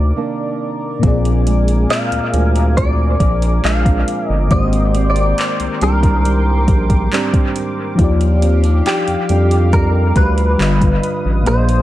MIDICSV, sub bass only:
0, 0, Header, 1, 2, 480
1, 0, Start_track
1, 0, Tempo, 869565
1, 569, Time_signature, 4, 2, 24, 8
1, 6525, End_track
2, 0, Start_track
2, 0, Title_t, "Sub bass"
2, 0, Program_c, 0, 38
2, 0, Note_on_c, 0, 38, 88
2, 69, Note_off_c, 0, 38, 0
2, 569, Note_on_c, 0, 34, 103
2, 1027, Note_off_c, 0, 34, 0
2, 1167, Note_on_c, 0, 38, 45
2, 1216, Note_off_c, 0, 38, 0
2, 1286, Note_on_c, 0, 38, 88
2, 1745, Note_off_c, 0, 38, 0
2, 1767, Note_on_c, 0, 34, 98
2, 1987, Note_off_c, 0, 34, 0
2, 2008, Note_on_c, 0, 34, 95
2, 2228, Note_off_c, 0, 34, 0
2, 2369, Note_on_c, 0, 31, 94
2, 2479, Note_off_c, 0, 31, 0
2, 2488, Note_on_c, 0, 32, 107
2, 2946, Note_off_c, 0, 32, 0
2, 3088, Note_on_c, 0, 36, 48
2, 3137, Note_off_c, 0, 36, 0
2, 3208, Note_on_c, 0, 36, 83
2, 3687, Note_on_c, 0, 34, 95
2, 3695, Note_off_c, 0, 36, 0
2, 3907, Note_off_c, 0, 34, 0
2, 4409, Note_on_c, 0, 39, 112
2, 4867, Note_off_c, 0, 39, 0
2, 5009, Note_on_c, 0, 41, 47
2, 5057, Note_off_c, 0, 41, 0
2, 5129, Note_on_c, 0, 41, 86
2, 5587, Note_off_c, 0, 41, 0
2, 5606, Note_on_c, 0, 38, 85
2, 5827, Note_off_c, 0, 38, 0
2, 5848, Note_on_c, 0, 31, 103
2, 6068, Note_off_c, 0, 31, 0
2, 6210, Note_on_c, 0, 33, 90
2, 6319, Note_off_c, 0, 33, 0
2, 6329, Note_on_c, 0, 34, 112
2, 6525, Note_off_c, 0, 34, 0
2, 6525, End_track
0, 0, End_of_file